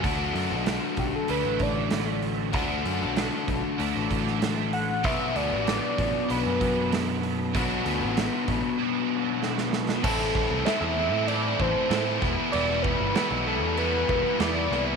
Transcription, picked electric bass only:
0.04 0.31 D2 medium
0.34 0.52 F#2 medium
0.50 0.78 B1 medium
0.98 1.11 B1 medium
1.29 1.43 D2 medium
1.45 1.58 A1 medium
1.60 2.54 A1 medium
2.54 2.81 D2 medium
2.85 3.03 F#2 medium
3.01 3.28 B1 medium
3.48 3.62 B1 medium
3.79 3.93 D2 medium
3.96 4.09 A1 medium
4.11 5.04 A1 medium
5.04 5.32 B1 medium
5.35 5.53 D2 medium
5.51 5.78 A1 medium
5.99 6.12 A1 medium
6.30 6.43 B1 medium
6.46 6.59 F#2 medium
6.61 7.56 F#2 medium
7.55 7.82 B1 loud
7.85 8.02 D2 medium
8.00 8.28 A1 medium
8.48 8.62 A1 medium
10.04 10.45 A1 loud
10.50 10.64 C2 medium
10.81 11.13 E2 medium
11.13 11.54 A2 medium
11.60 11.73 A1 medium
11.90 12.18 A2 medium
12.22 12.36 E1 medium
12.54 12.94 E1 medium
13.00 13.14 G1 medium
13.31 13.63 B1 medium
13.63 14.03 E2 medium
14.09 14.23 E1 loud
14.40 14.67 E2 medium
14.71 14.96 C2 loud

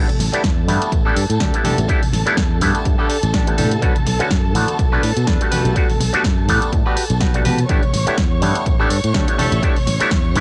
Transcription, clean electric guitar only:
0.19 muted clean electric guitar stroke soft
0.32 muted clean electric guitar stroke medium
0.57 muted clean electric guitar stroke soft
1.05 1.23 D4 medium
1.05 1.23 G4 medium
1.05 1.23 A4 loud
1.40 1.54 D4 medium
1.40 1.54 G4 medium
1.40 1.54 A4 medium
1.64 1.78 D4 medium
1.64 1.78 G4 medium
1.64 1.78 A4 loud
1.88 2.02 D4 loud
1.88 2.02 G4 loud
1.88 2.02 A4 loud
2.13 muted clean electric guitar stroke soft
2.26 muted clean electric guitar stroke medium
2.50 muted clean electric guitar stroke soft
2.98 3.16 D4 loud
2.98 3.16 G4 medium
2.98 3.16 A4 loud
3.33 3.47 D4 medium
3.33 3.47 G4 medium
3.33 3.47 A4 medium
3.58 3.71 D4 medium
3.58 3.71 G4 medium
3.58 3.71 A4 loud
3.82 3.96 D4 loud
3.82 3.96 A4 loud
3.82 3.96 B4 loud
4.06 muted clean electric guitar stroke soft
4.19 muted clean electric guitar stroke medium
4.30 muted clean electric guitar stroke soft
4.43 muted clean electric guitar stroke soft
4.92 5.10 D4 loud
4.92 5.10 A4 medium
4.92 5.10 B4 loud
5.27 5.41 D4 medium
5.27 5.41 A4 medium
5.27 5.41 B4 medium
5.51 5.91 F#4 medium
5.51 5.91 G4 medium
5.51 5.91 B4 loud
5.99 muted clean electric guitar stroke soft
6.13 muted clean electric guitar stroke medium
6.37 muted clean electric guitar stroke soft
6.86 7.04 F#4 loud
6.86 7.04 G4 loud
6.86 7.04 B4 loud
7.21 7.34 F#4 medium
7.21 7.34 G4 medium
7.21 7.35 B4 medium
7.45 7.59 F#4 medium
7.45 7.58 G4 medium
7.45 7.59 B4 loud
7.69 7.83 D4 loud
7.69 7.83 G4 medium
7.69 7.83 A4 loud
7.93 muted clean electric guitar stroke soft
8.07 muted clean electric guitar stroke medium
8.31 muted clean electric guitar stroke soft
8.80 8.97 D4 medium
8.80 8.97 G4 loud
8.80 8.97 A4 loud
9.14 9.28 D4 medium
9.14 9.28 G4 medium
9.14 9.28 A4 medium
9.38 9.52 D4 medium
9.38 9.52 G4 medium
9.38 9.52 A4 loud
9.62 9.76 D4 loud
9.62 9.76 G4 loud
9.62 9.76 A4 loud
9.87 muted clean electric guitar stroke soft
10.00 muted clean electric guitar stroke medium
10.10 muted clean electric guitar stroke soft
10.24 muted clean electric guitar stroke soft

